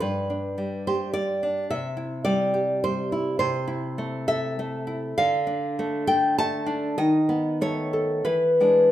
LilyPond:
\new Staff \with { instrumentName = "Nylon-string guitar" } { \time 3/4 \key c \major \tempo 4 = 102 << { b'4. c''8 d''4 | e''4 d''4 c''4 | \key a \minor c''4. e''4. | f''4. g''8 a''4 |
dis''4 cis''4 b'4 | } \\ { g,8 d'8 g8 g'8 g8 d'8 | c8 e'8 g8 g'8 g8 e'8 | c8 e'8 a8 a'8 a8 e'8 | d8 d'8 a8 a'8 a8 d'8 |
dis8 b8 a8 a'8 e8 <gis d'>8 | } >> }